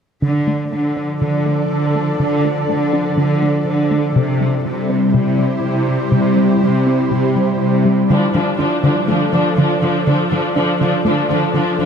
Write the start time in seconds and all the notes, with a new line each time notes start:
0.22 D3 F3 D4 A4 D5
0.48 A3
0.72 D3 A3
0.97 D4
1.22 D3
1.46 A3
1.71 D3
1.95 A3
2.19 D3
2.45 A3
2.69 D3 A3
2.93 D4
3.18 D3
3.42 A3
3.67 D3
3.91 A3
4.15 C3 G3 E4 G4 C5
4.41 G3
4.65 C3 G3
4.90 C4
5.14 C3
5.39 G3
5.63 C3
5.88 G3
6.12 C3
6.37 G3
6.62 C3 G3
6.87 C4
7.11 C3
7.36 G3
7.60 C3
7.85 G3
8.09 D3 F3 D4 F4 A4 D5
8.34 D3 F3 D4
8.58 D3 F3 D4
8.84 D3 F3 D4
9.08 D3 F3 A3 D4
9.33 D3 F3 D4
9.57 D3 F3 D4
9.82 D3 F3 D4
10.07 D3 F3 D4
10.31 D3 F3 D4
10.56 D3 F3 D4
10.81 D3 F3 D4
11.05 D3 F3 A3 D4
11.30 D3 F3 D4
11.54 D3 F3 D4
11.79 D3 F3 D4